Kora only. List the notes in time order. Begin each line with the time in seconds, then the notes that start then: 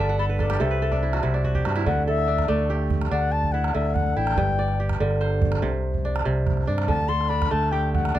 Already playing: G2 A4 D5
0.00 D3 E5
0.09 F#5
0.19 A4
0.29 B4
0.40 A4
0.50 G4
0.60 C3 A4
0.71 B4
0.82 A4
0.92 D4
1.03 E4
1.14 F#4
1.23 C3 E4
1.34 D4
1.44 F#4
1.55 G4
1.66 F#4
1.76 E4
1.86 D3
2.07 A4
2.28 D4
2.48 A3
2.70 G4
3.11 D4
3.54 E4
3.75 D3
4.17 E4
4.38 G2
4.59 D5
4.80 G4
5.00 D3
5.21 C5
5.62 C3
6.05 D4
6.25 C3
6.67 D4
6.88 D3
7.09 A4
7.30 D4
7.51 A3
7.72 G4
8.15 D4